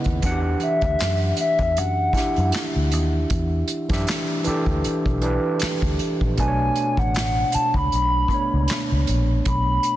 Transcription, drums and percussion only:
0, 0, Header, 1, 2, 480
1, 0, Start_track
1, 0, Tempo, 769231
1, 141, Time_signature, 4, 2, 24, 8
1, 6218, End_track
2, 0, Start_track
2, 0, Title_t, "Drums"
2, 26, Note_on_c, 9, 42, 32
2, 37, Note_on_c, 9, 36, 80
2, 89, Note_off_c, 9, 42, 0
2, 99, Note_off_c, 9, 36, 0
2, 139, Note_on_c, 9, 42, 70
2, 143, Note_on_c, 9, 36, 107
2, 202, Note_off_c, 9, 42, 0
2, 206, Note_off_c, 9, 36, 0
2, 374, Note_on_c, 9, 42, 53
2, 436, Note_off_c, 9, 42, 0
2, 508, Note_on_c, 9, 42, 30
2, 512, Note_on_c, 9, 36, 83
2, 570, Note_off_c, 9, 42, 0
2, 575, Note_off_c, 9, 36, 0
2, 618, Note_on_c, 9, 42, 52
2, 632, Note_on_c, 9, 39, 79
2, 633, Note_on_c, 9, 38, 82
2, 680, Note_off_c, 9, 42, 0
2, 694, Note_off_c, 9, 39, 0
2, 695, Note_off_c, 9, 38, 0
2, 853, Note_on_c, 9, 42, 63
2, 915, Note_off_c, 9, 42, 0
2, 989, Note_on_c, 9, 42, 33
2, 992, Note_on_c, 9, 36, 72
2, 1052, Note_off_c, 9, 42, 0
2, 1054, Note_off_c, 9, 36, 0
2, 1103, Note_on_c, 9, 42, 70
2, 1165, Note_off_c, 9, 42, 0
2, 1330, Note_on_c, 9, 36, 76
2, 1337, Note_on_c, 9, 42, 49
2, 1351, Note_on_c, 9, 38, 34
2, 1392, Note_off_c, 9, 36, 0
2, 1399, Note_off_c, 9, 42, 0
2, 1413, Note_off_c, 9, 38, 0
2, 1474, Note_on_c, 9, 42, 30
2, 1537, Note_off_c, 9, 42, 0
2, 1574, Note_on_c, 9, 42, 74
2, 1592, Note_on_c, 9, 39, 70
2, 1593, Note_on_c, 9, 38, 84
2, 1636, Note_off_c, 9, 42, 0
2, 1655, Note_off_c, 9, 39, 0
2, 1656, Note_off_c, 9, 38, 0
2, 1819, Note_on_c, 9, 42, 64
2, 1882, Note_off_c, 9, 42, 0
2, 2059, Note_on_c, 9, 42, 70
2, 2063, Note_on_c, 9, 36, 99
2, 2121, Note_off_c, 9, 42, 0
2, 2125, Note_off_c, 9, 36, 0
2, 2293, Note_on_c, 9, 42, 53
2, 2356, Note_off_c, 9, 42, 0
2, 2430, Note_on_c, 9, 42, 34
2, 2432, Note_on_c, 9, 36, 88
2, 2448, Note_on_c, 9, 38, 35
2, 2492, Note_off_c, 9, 42, 0
2, 2495, Note_off_c, 9, 36, 0
2, 2510, Note_off_c, 9, 38, 0
2, 2539, Note_on_c, 9, 42, 56
2, 2554, Note_on_c, 9, 39, 74
2, 2555, Note_on_c, 9, 38, 85
2, 2602, Note_off_c, 9, 42, 0
2, 2616, Note_off_c, 9, 39, 0
2, 2617, Note_off_c, 9, 38, 0
2, 2773, Note_on_c, 9, 42, 55
2, 2835, Note_off_c, 9, 42, 0
2, 2910, Note_on_c, 9, 36, 75
2, 2973, Note_off_c, 9, 36, 0
2, 3022, Note_on_c, 9, 42, 69
2, 3084, Note_off_c, 9, 42, 0
2, 3155, Note_on_c, 9, 36, 83
2, 3218, Note_off_c, 9, 36, 0
2, 3255, Note_on_c, 9, 42, 48
2, 3317, Note_off_c, 9, 42, 0
2, 3491, Note_on_c, 9, 42, 69
2, 3509, Note_on_c, 9, 39, 67
2, 3511, Note_on_c, 9, 38, 82
2, 3554, Note_off_c, 9, 42, 0
2, 3572, Note_off_c, 9, 39, 0
2, 3573, Note_off_c, 9, 38, 0
2, 3633, Note_on_c, 9, 36, 91
2, 3696, Note_off_c, 9, 36, 0
2, 3738, Note_on_c, 9, 42, 59
2, 3801, Note_off_c, 9, 42, 0
2, 3876, Note_on_c, 9, 36, 82
2, 3938, Note_off_c, 9, 36, 0
2, 3978, Note_on_c, 9, 42, 71
2, 3982, Note_on_c, 9, 36, 100
2, 4040, Note_off_c, 9, 42, 0
2, 4044, Note_off_c, 9, 36, 0
2, 4216, Note_on_c, 9, 42, 61
2, 4278, Note_off_c, 9, 42, 0
2, 4352, Note_on_c, 9, 36, 79
2, 4414, Note_off_c, 9, 36, 0
2, 4458, Note_on_c, 9, 42, 53
2, 4473, Note_on_c, 9, 39, 72
2, 4474, Note_on_c, 9, 38, 95
2, 4521, Note_off_c, 9, 42, 0
2, 4535, Note_off_c, 9, 39, 0
2, 4536, Note_off_c, 9, 38, 0
2, 4694, Note_on_c, 9, 42, 57
2, 4756, Note_off_c, 9, 42, 0
2, 4831, Note_on_c, 9, 36, 77
2, 4893, Note_off_c, 9, 36, 0
2, 4943, Note_on_c, 9, 42, 69
2, 5006, Note_off_c, 9, 42, 0
2, 5169, Note_on_c, 9, 36, 71
2, 5178, Note_on_c, 9, 42, 50
2, 5231, Note_off_c, 9, 36, 0
2, 5240, Note_off_c, 9, 42, 0
2, 5415, Note_on_c, 9, 42, 64
2, 5433, Note_on_c, 9, 39, 61
2, 5434, Note_on_c, 9, 38, 85
2, 5477, Note_off_c, 9, 42, 0
2, 5495, Note_off_c, 9, 39, 0
2, 5496, Note_off_c, 9, 38, 0
2, 5661, Note_on_c, 9, 42, 58
2, 5724, Note_off_c, 9, 42, 0
2, 5899, Note_on_c, 9, 42, 68
2, 5903, Note_on_c, 9, 36, 108
2, 5962, Note_off_c, 9, 42, 0
2, 5966, Note_off_c, 9, 36, 0
2, 6135, Note_on_c, 9, 42, 53
2, 6197, Note_off_c, 9, 42, 0
2, 6218, End_track
0, 0, End_of_file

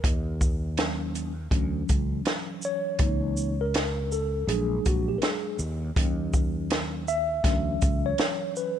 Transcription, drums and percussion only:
0, 0, Header, 1, 2, 480
1, 0, Start_track
1, 0, Tempo, 740741
1, 27, Time_signature, 4, 2, 24, 8
1, 5697, End_track
2, 0, Start_track
2, 0, Title_t, "Drums"
2, 25, Note_on_c, 9, 36, 96
2, 29, Note_on_c, 9, 42, 74
2, 90, Note_off_c, 9, 36, 0
2, 94, Note_off_c, 9, 42, 0
2, 266, Note_on_c, 9, 36, 83
2, 267, Note_on_c, 9, 82, 55
2, 330, Note_off_c, 9, 36, 0
2, 332, Note_off_c, 9, 82, 0
2, 502, Note_on_c, 9, 42, 80
2, 510, Note_on_c, 9, 38, 116
2, 567, Note_off_c, 9, 42, 0
2, 575, Note_off_c, 9, 38, 0
2, 746, Note_on_c, 9, 42, 48
2, 746, Note_on_c, 9, 82, 44
2, 811, Note_off_c, 9, 42, 0
2, 811, Note_off_c, 9, 82, 0
2, 980, Note_on_c, 9, 36, 84
2, 983, Note_on_c, 9, 42, 72
2, 1044, Note_off_c, 9, 36, 0
2, 1047, Note_off_c, 9, 42, 0
2, 1225, Note_on_c, 9, 42, 52
2, 1225, Note_on_c, 9, 82, 50
2, 1228, Note_on_c, 9, 36, 85
2, 1290, Note_off_c, 9, 42, 0
2, 1290, Note_off_c, 9, 82, 0
2, 1293, Note_off_c, 9, 36, 0
2, 1461, Note_on_c, 9, 42, 72
2, 1469, Note_on_c, 9, 38, 121
2, 1525, Note_off_c, 9, 42, 0
2, 1534, Note_off_c, 9, 38, 0
2, 1697, Note_on_c, 9, 82, 53
2, 1762, Note_off_c, 9, 82, 0
2, 1936, Note_on_c, 9, 42, 79
2, 1940, Note_on_c, 9, 36, 100
2, 2001, Note_off_c, 9, 42, 0
2, 2005, Note_off_c, 9, 36, 0
2, 2182, Note_on_c, 9, 82, 61
2, 2247, Note_off_c, 9, 82, 0
2, 2426, Note_on_c, 9, 42, 82
2, 2434, Note_on_c, 9, 38, 117
2, 2490, Note_off_c, 9, 42, 0
2, 2499, Note_off_c, 9, 38, 0
2, 2668, Note_on_c, 9, 82, 48
2, 2733, Note_off_c, 9, 82, 0
2, 2907, Note_on_c, 9, 42, 75
2, 2971, Note_off_c, 9, 42, 0
2, 3147, Note_on_c, 9, 42, 54
2, 3147, Note_on_c, 9, 82, 49
2, 3149, Note_on_c, 9, 36, 88
2, 3212, Note_off_c, 9, 42, 0
2, 3212, Note_off_c, 9, 82, 0
2, 3214, Note_off_c, 9, 36, 0
2, 3381, Note_on_c, 9, 42, 72
2, 3390, Note_on_c, 9, 38, 118
2, 3446, Note_off_c, 9, 42, 0
2, 3455, Note_off_c, 9, 38, 0
2, 3621, Note_on_c, 9, 82, 57
2, 3686, Note_off_c, 9, 82, 0
2, 3865, Note_on_c, 9, 36, 103
2, 3868, Note_on_c, 9, 42, 78
2, 3929, Note_off_c, 9, 36, 0
2, 3933, Note_off_c, 9, 42, 0
2, 4104, Note_on_c, 9, 82, 62
2, 4105, Note_on_c, 9, 36, 85
2, 4169, Note_off_c, 9, 82, 0
2, 4170, Note_off_c, 9, 36, 0
2, 4344, Note_on_c, 9, 42, 81
2, 4353, Note_on_c, 9, 38, 117
2, 4409, Note_off_c, 9, 42, 0
2, 4417, Note_off_c, 9, 38, 0
2, 4587, Note_on_c, 9, 82, 52
2, 4652, Note_off_c, 9, 82, 0
2, 4821, Note_on_c, 9, 36, 89
2, 4823, Note_on_c, 9, 42, 78
2, 4832, Note_on_c, 9, 38, 32
2, 4886, Note_off_c, 9, 36, 0
2, 4888, Note_off_c, 9, 42, 0
2, 4897, Note_off_c, 9, 38, 0
2, 5065, Note_on_c, 9, 42, 49
2, 5065, Note_on_c, 9, 82, 53
2, 5069, Note_on_c, 9, 36, 95
2, 5130, Note_off_c, 9, 42, 0
2, 5130, Note_off_c, 9, 82, 0
2, 5134, Note_off_c, 9, 36, 0
2, 5302, Note_on_c, 9, 42, 75
2, 5310, Note_on_c, 9, 38, 114
2, 5367, Note_off_c, 9, 42, 0
2, 5375, Note_off_c, 9, 38, 0
2, 5546, Note_on_c, 9, 82, 54
2, 5611, Note_off_c, 9, 82, 0
2, 5697, End_track
0, 0, End_of_file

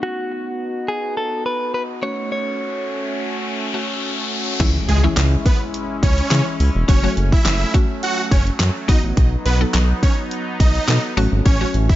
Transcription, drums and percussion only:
0, 0, Header, 1, 2, 480
1, 0, Start_track
1, 0, Key_signature, 4, "minor"
1, 0, Tempo, 571429
1, 24, Time_signature, 4, 2, 24, 8
1, 10043, End_track
2, 0, Start_track
2, 0, Title_t, "Drums"
2, 3864, Note_on_c, 9, 36, 114
2, 3864, Note_on_c, 9, 42, 95
2, 3864, Note_on_c, 9, 49, 109
2, 3948, Note_off_c, 9, 36, 0
2, 3948, Note_off_c, 9, 42, 0
2, 3948, Note_off_c, 9, 49, 0
2, 4104, Note_on_c, 9, 42, 80
2, 4188, Note_off_c, 9, 42, 0
2, 4339, Note_on_c, 9, 38, 86
2, 4343, Note_on_c, 9, 42, 89
2, 4345, Note_on_c, 9, 39, 112
2, 4423, Note_off_c, 9, 38, 0
2, 4427, Note_off_c, 9, 42, 0
2, 4429, Note_off_c, 9, 39, 0
2, 4583, Note_on_c, 9, 36, 101
2, 4585, Note_on_c, 9, 42, 72
2, 4667, Note_off_c, 9, 36, 0
2, 4669, Note_off_c, 9, 42, 0
2, 4823, Note_on_c, 9, 42, 90
2, 4907, Note_off_c, 9, 42, 0
2, 5064, Note_on_c, 9, 36, 98
2, 5066, Note_on_c, 9, 42, 93
2, 5148, Note_off_c, 9, 36, 0
2, 5150, Note_off_c, 9, 42, 0
2, 5191, Note_on_c, 9, 42, 57
2, 5275, Note_off_c, 9, 42, 0
2, 5298, Note_on_c, 9, 38, 92
2, 5303, Note_on_c, 9, 42, 103
2, 5304, Note_on_c, 9, 39, 113
2, 5382, Note_off_c, 9, 38, 0
2, 5387, Note_off_c, 9, 42, 0
2, 5388, Note_off_c, 9, 39, 0
2, 5546, Note_on_c, 9, 46, 87
2, 5630, Note_off_c, 9, 46, 0
2, 5784, Note_on_c, 9, 36, 123
2, 5784, Note_on_c, 9, 42, 99
2, 5868, Note_off_c, 9, 36, 0
2, 5868, Note_off_c, 9, 42, 0
2, 6024, Note_on_c, 9, 42, 81
2, 6108, Note_off_c, 9, 42, 0
2, 6152, Note_on_c, 9, 36, 96
2, 6236, Note_off_c, 9, 36, 0
2, 6259, Note_on_c, 9, 38, 90
2, 6264, Note_on_c, 9, 42, 91
2, 6265, Note_on_c, 9, 39, 116
2, 6343, Note_off_c, 9, 38, 0
2, 6348, Note_off_c, 9, 42, 0
2, 6349, Note_off_c, 9, 39, 0
2, 6504, Note_on_c, 9, 36, 100
2, 6505, Note_on_c, 9, 42, 72
2, 6588, Note_off_c, 9, 36, 0
2, 6589, Note_off_c, 9, 42, 0
2, 6745, Note_on_c, 9, 42, 90
2, 6829, Note_off_c, 9, 42, 0
2, 6984, Note_on_c, 9, 36, 99
2, 6988, Note_on_c, 9, 42, 88
2, 7068, Note_off_c, 9, 36, 0
2, 7072, Note_off_c, 9, 42, 0
2, 7112, Note_on_c, 9, 42, 56
2, 7196, Note_off_c, 9, 42, 0
2, 7219, Note_on_c, 9, 38, 89
2, 7225, Note_on_c, 9, 39, 115
2, 7225, Note_on_c, 9, 42, 101
2, 7303, Note_off_c, 9, 38, 0
2, 7309, Note_off_c, 9, 39, 0
2, 7309, Note_off_c, 9, 42, 0
2, 7465, Note_on_c, 9, 36, 103
2, 7466, Note_on_c, 9, 46, 91
2, 7549, Note_off_c, 9, 36, 0
2, 7550, Note_off_c, 9, 46, 0
2, 7704, Note_on_c, 9, 42, 101
2, 7705, Note_on_c, 9, 36, 115
2, 7788, Note_off_c, 9, 42, 0
2, 7789, Note_off_c, 9, 36, 0
2, 7943, Note_on_c, 9, 42, 77
2, 8027, Note_off_c, 9, 42, 0
2, 8179, Note_on_c, 9, 38, 89
2, 8184, Note_on_c, 9, 42, 93
2, 8185, Note_on_c, 9, 39, 118
2, 8263, Note_off_c, 9, 38, 0
2, 8268, Note_off_c, 9, 42, 0
2, 8269, Note_off_c, 9, 39, 0
2, 8424, Note_on_c, 9, 36, 104
2, 8426, Note_on_c, 9, 42, 74
2, 8508, Note_off_c, 9, 36, 0
2, 8510, Note_off_c, 9, 42, 0
2, 8663, Note_on_c, 9, 42, 91
2, 8747, Note_off_c, 9, 42, 0
2, 8904, Note_on_c, 9, 36, 98
2, 8906, Note_on_c, 9, 42, 88
2, 8988, Note_off_c, 9, 36, 0
2, 8990, Note_off_c, 9, 42, 0
2, 9032, Note_on_c, 9, 42, 59
2, 9116, Note_off_c, 9, 42, 0
2, 9139, Note_on_c, 9, 38, 86
2, 9145, Note_on_c, 9, 39, 115
2, 9145, Note_on_c, 9, 42, 96
2, 9223, Note_off_c, 9, 38, 0
2, 9229, Note_off_c, 9, 39, 0
2, 9229, Note_off_c, 9, 42, 0
2, 9386, Note_on_c, 9, 46, 91
2, 9470, Note_off_c, 9, 46, 0
2, 9624, Note_on_c, 9, 36, 121
2, 9624, Note_on_c, 9, 42, 100
2, 9708, Note_off_c, 9, 36, 0
2, 9708, Note_off_c, 9, 42, 0
2, 9863, Note_on_c, 9, 42, 80
2, 9947, Note_off_c, 9, 42, 0
2, 9992, Note_on_c, 9, 36, 97
2, 10043, Note_off_c, 9, 36, 0
2, 10043, End_track
0, 0, End_of_file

